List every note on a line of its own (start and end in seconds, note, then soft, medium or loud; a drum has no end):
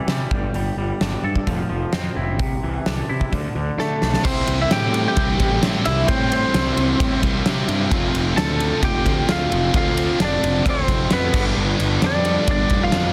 0.00 0.31 E3 medium
0.00 0.32 D4 medium
0.00 0.32 E4 medium
0.07 0.22 C3 medium
0.07 0.31 G3 medium
0.07 snare medium
0.07 open hi-hat soft
0.31 0.45 G1 medium
0.31 0.54 G3 medium
0.31 kick medium
0.54 0.69 G1 medium
0.54 0.77 G3 medium
0.54 open hi-hat soft
0.77 0.91 G1 medium
0.77 1.47 G3 medium
1.01 1.15 G1 medium
1.01 1.48 D4 medium
1.01 snare loud
1.01 open hi-hat soft
1.24 1.38 G2 medium
1.24 1.48 A4 medium
1.35 kick medium
1.47 1.62 F1 medium
1.47 1.68 F3 medium
1.47 kick medium
1.47 open hi-hat soft
1.69 1.85 F1 medium
1.69 2.40 F3 medium
1.93 2.08 F2 medium
1.93 2.40 C4 medium
1.93 snare medium
1.93 open hi-hat soft
2.17 2.40 F1 medium
2.17 2.40 E4 medium
2.39 2.54 C2 medium
2.39 3.32 C3 medium
2.39 kick medium
2.39 open hi-hat soft
2.63 2.78 C2 medium
2.63 3.31 E3 medium
2.86 3.01 C2 medium
2.86 3.33 D4 medium
2.86 snare medium
2.86 open hi-hat soft
3.09 3.24 C3 medium
3.09 3.33 E4 medium
3.21 kick medium
3.32 3.47 D2 medium
3.32 3.55 D3 medium
3.32 kick medium
3.32 open hi-hat soft
3.55 3.70 D2 medium
3.55 4.25 D3 medium
3.78 3.92 D3 medium
3.78 4.25 A3 medium
3.78 4.23 A3 soft
3.78 4.27 A4 medium
3.78 snare soft
4.02 4.16 B1 medium
4.02 4.25 D4 medium
4.02 snare medium
4.14 snare medium
4.24 4.42 C2 medium
4.24 5.16 C3 medium
4.24 5.17 E3 medium
4.24 5.17 G3 medium
4.24 5.18 C4 medium
4.24 4.58 C4 medium
4.24 5.19 E4 medium
4.24 7.87 G4 medium
4.24 7.87 C5 medium
4.24 4.61 C5 loud
4.24 7.87 E5 medium
4.24 11.29 C6 medium
4.24 kick loud
4.24 crash loud
4.47 4.65 C2 medium
4.47 ride medium
4.62 4.71 E4 medium
4.62 4.71 E5 medium
4.71 5.05 A2 medium
4.71 5.04 G4 medium
4.71 5.07 G5 loud
4.71 snare loud
4.71 ride loud
4.94 ride medium
5.08 5.60 G4 medium
5.08 5.60 G5 medium
5.16 5.34 C2 loud
5.16 6.07 C3 medium
5.16 6.07 E3 medium
5.16 6.07 G3 medium
5.16 6.10 C4 medium
5.16 6.08 E4 medium
5.16 kick loud
5.16 ride loud
5.40 5.57 A1 loud
5.40 kick medium
5.40 ride medium
5.63 5.80 A2 medium
5.63 snare loud
5.63 ride loud
5.84 6.03 C2 medium
5.84 6.08 C3 medium
5.84 6.08 E3 medium
5.84 6.08 G3 medium
5.84 6.11 C4 medium
5.84 6.06 E4 medium
5.84 6.08 E4 medium
5.84 6.09 E5 medium
5.84 ride medium
6.08 6.42 A2 medium
6.08 6.98 C3 medium
6.08 6.99 E3 medium
6.08 6.99 G3 medium
6.08 6.30 C4 medium
6.08 7.01 C4 medium
6.08 7.00 E4 medium
6.08 6.31 C5 loud
6.08 kick loud
6.08 ride loud
6.32 7.20 C4 medium
6.32 7.19 C5 medium
6.32 ride medium
6.54 6.72 C2 medium
6.54 snare loud
6.54 ride loud
6.77 6.94 C2 medium
6.77 ride medium
6.99 7.17 A2 medium
6.99 7.90 C3 medium
6.99 7.90 E3 medium
6.99 7.90 G3 medium
6.99 7.92 C4 medium
6.99 7.91 E4 medium
6.99 kick loud
6.99 ride loud
7.23 7.40 C2 medium
7.23 kick medium
7.23 ride medium
7.46 7.63 C3 medium
7.46 snare loud
7.46 ride loud
7.68 7.85 G2 medium
7.68 7.91 C3 medium
7.68 7.90 E3 medium
7.68 7.90 G3 medium
7.68 7.93 C4 medium
7.68 7.90 E4 medium
7.68 ride medium
7.90 8.08 F1 medium
7.90 8.81 F2 loud
7.90 8.82 C3 loud
7.90 8.80 F3 medium
7.90 8.82 A3 loud
7.90 8.82 C4 medium
7.90 8.82 F4 medium
7.90 11.31 A4 medium
7.90 11.31 C5 medium
7.90 11.31 F5 medium
7.90 kick loud
7.90 ride loud
8.14 8.31 F1 medium
8.14 ride medium
8.37 8.71 D2 medium
8.37 8.80 A4 medium
8.37 8.84 A5 loud
8.37 snare loud
8.37 ride loud
8.60 ride medium
8.82 8.99 F1 medium
8.82 9.72 F2 medium
8.82 9.73 C3 medium
8.82 9.72 F3 medium
8.82 9.73 A3 medium
8.82 9.73 C4 medium
8.82 9.74 F4 medium
8.82 9.26 G4 medium
8.82 9.31 G5 medium
8.82 kick loud
8.82 ride loud
9.05 9.22 D2 medium
9.05 kick medium
9.05 ride medium
9.29 9.46 D2 medium
9.29 9.72 F4 medium
9.29 9.73 F5 medium
9.29 snare loud
9.29 ride medium
9.50 9.69 F1 medium
9.50 9.72 F3 medium
9.50 9.73 A3 medium
9.50 9.73 C4 medium
9.50 9.72 F4 medium
9.50 ride medium
9.73 10.08 D2 medium
9.73 10.63 F2 loud
9.73 10.64 C3 loud
9.73 10.64 F3 medium
9.73 10.64 A3 medium
9.73 10.64 C4 medium
9.73 10.17 F4 medium
9.73 10.65 F4 medium
9.73 kick loud
9.73 ride loud
9.77 10.18 F5 loud
9.97 ride medium
10.20 10.37 F1 medium
10.20 10.63 D4 medium
10.20 snare loud
10.20 ride loud
10.24 10.65 D5 medium
10.43 10.60 F1 medium
10.43 ride medium
10.64 10.82 D2 loud
10.64 11.32 F2 medium
10.64 11.33 C3 medium
10.64 11.32 F3 medium
10.64 11.33 A3 medium
10.64 11.33 C4 medium
10.64 11.34 F4 medium
10.64 kick loud
10.64 ride loud
10.69 11.10 C4 medium
10.69 11.13 C5 medium
10.88 11.05 F1 loud
10.88 kick medium
10.88 ride medium
11.10 11.29 F2 medium
11.10 11.44 B3 medium
11.10 11.44 B4 medium
11.10 snare loud
11.10 ride loud
11.33 11.51 G1 medium
11.33 12.23 G2 loud
11.33 12.24 D3 loud
11.33 12.24 G3 loud
11.33 12.25 B3 medium
11.33 12.24 D4 loud
11.33 13.13 G4 medium
11.33 13.13 B4 medium
11.33 13.13 D5 medium
11.33 13.13 B5 medium
11.33 kick loud
11.33 crash loud
11.57 11.74 G1 medium
11.80 11.97 G1 medium
11.80 ride medium
12.02 12.37 F2 medium
12.02 12.46 D4 medium
12.02 snare loud
12.02 ride loud
12.06 12.47 D5 loud
12.25 13.13 G2 medium
12.25 13.13 D3 medium
12.25 13.13 G3 medium
12.25 13.13 B3 medium
12.25 13.13 D4 medium
12.25 ride medium
12.47 12.65 G1 medium
12.47 12.81 D4 medium
12.47 12.82 D5 medium
12.47 kick loud
12.47 ride loud
12.70 12.88 F1 medium
12.70 kick medium
12.70 ride medium
12.83 13.13 F4 medium
12.83 13.13 F5 loud
12.92 13.11 F2 medium
12.92 13.13 G2 medium
12.92 13.13 D3 medium
12.92 13.13 G3 medium
12.92 13.13 B3 medium
12.92 snare loud
12.92 ride loud
12.96 13.13 D4 medium